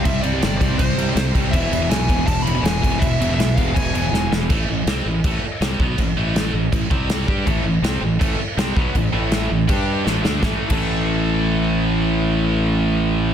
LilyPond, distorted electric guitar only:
\new Staff \with { instrumentName = "Distorted electric guitar" } { \clef bass \time 4/4 \key a \minor \tempo 4 = 162 <c g>8 <c g>16 <c g>16 <c g>8 <c g>16 <c g>16 <c g>8 <c g>16 <c g>16 <c g>8 <c g>16 <c g>16 | <e, b, e>8 <e, b,>16 <e, b,>16 <e, b,>8 <e, b,>16 <e, b,>16 <e, b,>8 <e, b,>16 <e, b,>16 <e, b,>8 <e, b,>16 <e, b,>16 | <e, b,>8 <e, b,>16 <e, b,>16 <e, b,>8 <e, b,>16 <e, b,>16 <e, b,>8 <e, b,>16 <e, b,>16 <e, b,>8 <e, b,>16 <e, b,>16 | <a, e a>8 <a, e>8 <c g c'>8 <a, e>8 <a, e a>8 r8 <c g c'>8 <b, fis b>8 |
<a, e>8 <a, e a>4 <a, e>8 <a, e>8 <c g c'>4 <g d' g'>8 | <a, e a>8 <a, e>8 <c g c'>8 <a, e>8 <a, e a>8 r8 <c g c'>8 <b, fis b>8 | <a, e>8 <a, e a>4 <a, e>8 <g d' g'>4 <a, e a>8 <d a d'>8 | <a, e a>16 r8 <a, e a>2.~ <a, e a>16~ |
<a, e a>1 | }